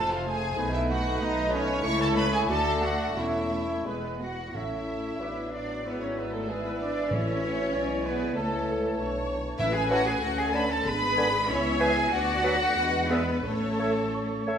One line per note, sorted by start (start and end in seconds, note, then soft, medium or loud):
0.00 0.51 F1 medium
0.00 0.51 F2 medium
0.00 1.79 A3 medium
0.00 1.80 A3 medium
0.00 0.58 F4 medium
0.00 0.12 A4 medium
0.00 0.60 C5 medium
0.00 0.10 A5 medium
0.00 0.12 A5 medium
0.11 0.27 F4 medium
0.11 0.28 F4 medium
0.11 0.27 F5 medium
0.11 0.18 F5 medium
0.26 0.34 A3 medium
0.26 0.34 F4 medium
0.26 0.73 G#4 medium
0.26 0.74 G#4 medium
0.26 0.73 G#5 medium
0.26 0.74 G#5 medium
0.58 1.14 B1 medium
0.58 1.14 B2 medium
0.58 0.66 A3 medium
0.58 1.81 D#4 medium
0.58 0.66 D#4 medium
0.58 1.68 D#4 medium
0.58 1.84 B4 medium
0.73 0.89 E4 medium
0.73 0.80 E5 medium
0.73 0.90 E5 medium
0.89 0.98 A3 medium
0.89 0.98 D#4 medium
0.89 1.21 F#4 medium
0.89 1.20 F#5 medium
0.89 1.21 F#5 medium
1.20 1.76 B1 medium
1.20 1.76 B2 medium
1.20 1.28 A3 medium
1.20 1.28 D#4 medium
1.20 1.52 D#4 medium
1.20 1.53 D#5 medium
1.51 1.60 A3 medium
1.51 1.83 C#4 medium
1.51 1.84 C#4 medium
1.51 1.60 D#4 medium
1.51 1.83 C#5 medium
1.51 1.84 C#5 loud
1.83 2.40 C#2 loud
1.83 2.40 C#3 medium
1.83 1.91 A3 medium
1.83 3.87 A3 medium
1.83 2.44 A3 medium
1.83 1.91 E4 medium
1.83 2.44 E4 medium
1.83 2.50 E4 medium
1.83 2.00 C#5 loud
1.83 1.90 C#5 loud
1.83 2.50 C#5 medium
1.83 2.00 C#6 loud
2.00 2.16 A4 medium
2.00 2.15 A5 medium
2.00 2.08 A5 loud
2.15 2.23 A3 medium
2.15 2.23 E4 medium
2.15 2.32 B4 loud
2.15 2.23 B4 loud
2.15 2.32 B5 medium
2.15 2.32 B5 loud
2.32 2.39 G#4 medium
2.32 2.49 G#4 medium
2.32 2.48 G#5 medium
2.32 2.39 G#5 loud
2.47 3.08 D2 medium
2.47 3.08 D3 medium
2.47 3.15 A3 medium
2.47 2.56 A3 medium
2.47 3.16 F#4 medium
2.47 2.56 F#4 medium
2.47 3.16 F#4 medium
2.47 2.81 A4 loud
2.47 2.82 A4 loud
2.47 3.16 D5 medium
2.47 2.81 A5 loud
2.81 2.89 A3 medium
2.81 2.89 F#4 medium
2.81 3.17 F#4 medium
2.81 3.17 F#5 medium
2.81 3.16 F#5 medium
3.16 3.78 E1 medium
3.16 3.79 E2 medium
3.16 3.24 A3 medium
3.16 3.85 A3 medium
3.16 3.85 C#4 medium
3.16 3.24 C#4 medium
3.16 4.19 E4 medium
3.16 3.87 E4 medium
3.16 3.88 C#5 medium
3.16 3.87 E5 medium
3.16 3.64 E5 medium
3.51 3.59 A3 soft
3.51 3.59 C#4 soft
3.86 4.47 E1 medium
3.86 4.47 E2 medium
3.86 4.21 G#3 medium
3.86 3.94 G#3 soft
3.86 4.22 G#3 medium
3.86 3.94 B3 soft
3.86 4.19 B3 medium
3.86 4.21 B3 medium
3.86 4.21 B4 soft
3.86 4.19 B4 medium
3.86 4.19 B4 soft
4.20 4.28 G#3 soft
4.20 4.28 B3 soft
4.20 4.54 F#4 medium
4.20 4.54 F#5 medium
4.20 4.55 F#5 medium
4.20 4.55 F#5 soft
4.20 4.56 F#5 medium
4.53 5.17 A1 soft
4.53 5.16 A2 medium
4.53 5.16 A3 soft
4.53 5.21 A3 soft
4.53 5.16 C#4 soft
4.53 5.53 E4 medium
4.53 5.22 A4 soft
4.53 5.23 C#5 soft
4.53 5.52 E5 medium
4.53 5.53 E5 soft
4.53 5.51 E5 medium
4.53 5.53 E5 medium
5.19 5.84 A1 medium
5.19 6.50 F#3 soft
5.19 5.84 B3 medium
5.19 5.86 D4 medium
5.19 5.50 B4 soft
5.19 5.84 B4 soft
5.19 5.86 D5 soft
5.52 5.85 D4 medium
5.52 5.85 F#4 soft
5.52 5.84 D5 medium
5.52 5.85 D5 medium
5.84 7.11 G#1 medium
5.84 6.48 B3 soft
5.84 6.01 B3 medium
5.84 6.47 E4 soft
5.84 6.48 G#4 medium
5.84 6.01 B4 medium
5.84 5.91 B4 medium
5.84 6.02 B4 medium
5.84 7.09 D5 soft
5.84 7.75 E5 medium
6.00 6.18 C#4 medium
6.00 6.07 C#5 medium
6.00 6.17 C#5 medium
6.00 6.07 C#5 medium
6.00 6.17 C#5 medium
6.17 6.33 B3 medium
6.17 6.33 B4 medium
6.17 6.23 B4 medium
6.17 6.33 B4 medium
6.17 6.34 B4 medium
6.33 6.49 A3 medium
6.33 6.49 A4 medium
6.33 6.41 A4 soft
6.48 8.34 E3 medium
6.48 6.65 G#3 medium
6.48 7.11 B3 medium
6.48 7.11 E4 medium
6.48 6.64 G#4 medium
6.48 6.55 G#4 medium
6.48 6.65 G#4 medium
6.48 7.11 B4 medium
6.64 6.80 B3 medium
6.64 6.79 B4 medium
6.64 6.71 B4 medium
6.64 6.80 B4 medium
6.64 6.81 B4 medium
6.79 7.12 D4 medium
6.79 7.10 D5 medium
6.79 7.11 D5 medium
7.11 7.73 A1 medium
7.11 7.69 A2 medium
7.11 7.73 A3 medium
7.11 8.04 C#4 medium
7.11 7.73 E4 medium
7.11 7.42 A4 medium
7.11 8.04 C#5 medium
7.11 8.03 C#5 medium
7.11 7.72 C#5 medium
7.42 7.73 F#4 medium
7.72 8.35 B1 medium
7.72 8.36 G#3 medium
7.72 8.04 E4 medium
7.72 8.35 E4 medium
7.72 8.36 D5 medium
7.72 8.35 G#5 medium
8.03 8.35 B3 medium
8.03 8.35 G#4 medium
8.03 8.35 B4 medium
8.03 8.36 B4 medium
8.34 8.96 C#2 medium
8.34 9.57 E3 medium
8.34 8.98 A3 medium
8.34 9.58 A3 medium
8.34 8.97 E4 medium
8.34 8.96 A4 medium
8.34 8.97 A4 medium
8.34 9.60 C#5 medium
8.34 9.57 A5 medium
8.98 9.59 B1 medium
8.98 9.61 D4 medium
8.98 9.59 C#5 medium
9.58 10.21 A1 medium
9.58 10.19 A2 medium
9.58 10.21 A3 medium
9.58 10.21 C#4 medium
9.58 9.74 E4 loud
9.58 10.21 B4 medium
9.58 9.74 E5 medium
9.58 9.65 E5 loud
9.58 9.65 E5 medium
9.58 9.74 E5 loud
9.74 9.91 G#4 loud
9.74 9.91 G#5 medium
9.74 9.90 G#5 medium
9.74 9.82 G#5 medium
9.74 9.91 G#5 medium
9.90 10.02 E3 medium
9.90 10.06 F#4 loud
9.90 10.01 C#5 medium
9.90 10.06 F#5 loud
9.90 10.07 F#5 medium
9.90 9.98 F#5 medium
9.90 10.07 F#5 medium
9.90 10.03 A5 medium
10.05 10.23 G#4 medium
10.05 10.22 G#5 medium
10.05 10.23 G#5 medium
10.21 10.85 D2 medium
10.21 10.85 A3 medium
10.21 10.85 C#4 medium
10.21 10.38 F#4 loud
10.21 10.86 A4 medium
10.21 10.38 F#5 medium
10.21 10.39 F#5 medium
10.37 10.54 G#4 medium
10.37 10.54 G#5 medium
10.37 10.46 G#5 medium
10.54 10.65 D3 medium
10.54 10.70 B4 loud
10.54 10.65 C#5 medium
10.54 10.66 A5 medium
10.54 10.61 B5 medium
10.54 10.70 B5 medium
10.54 10.71 B5 medium
10.69 10.86 A4 loud
10.69 10.86 A5 medium
10.69 10.77 A5 medium
10.69 10.87 A5 medium
10.85 11.50 G#1 medium
10.85 11.32 B3 medium
10.85 11.32 D4 medium
10.85 11.48 G#4 medium
10.85 11.49 B4 loud
10.85 11.48 B5 loud
10.85 11.50 B5 loud
11.17 11.29 D3 medium
11.17 11.28 B4 medium
11.17 11.29 G#5 medium
11.49 12.12 C#2 medium
11.49 12.11 B3 medium
11.49 11.81 C#4 loud
11.49 12.12 E4 medium
11.49 11.80 C#5 medium
11.49 11.81 C#5 loud
11.49 11.81 C#5 medium
11.49 12.12 E5 medium
11.80 11.91 E3 medium
11.80 12.12 G#4 loud
11.80 11.91 B4 medium
11.80 12.12 G#5 medium
11.80 11.92 G#5 medium
11.80 12.12 G#5 medium
11.80 12.13 G#5 medium
12.12 12.73 D2 medium
12.12 12.43 B3 medium
12.12 12.73 D4 medium
12.12 13.09 F#4 loud
12.12 12.76 D5 medium
12.12 13.09 F#5 medium
12.12 13.09 F#5 loud
12.12 13.11 F#5 loud
12.12 13.09 F#5 loud
12.43 12.56 F#3 medium
12.43 12.78 A3 medium
12.43 12.55 B4 medium
12.43 12.57 F#5 medium
12.77 13.45 E2 medium
12.77 13.45 G#3 medium
12.77 13.43 D4 medium
12.77 13.44 B4 medium
13.10 13.22 G#3 medium
13.10 13.45 B3 loud
13.10 13.44 B4 medium
13.10 13.45 B4 medium
13.10 13.22 D5 medium
13.10 13.23 E5 medium
13.44 14.58 A1 medium
13.44 14.46 A3 medium
13.44 14.46 C#4 medium
13.44 14.48 A4 medium
13.44 14.46 A4 medium
13.44 14.49 A4 medium
13.44 14.45 C#5 medium
13.78 13.91 A3 medium
13.78 13.91 C#5 medium
13.78 13.92 E5 medium
14.14 14.46 C#5 medium
14.46 14.58 A3 medium
14.46 14.58 C#5 medium
14.46 14.58 E5 medium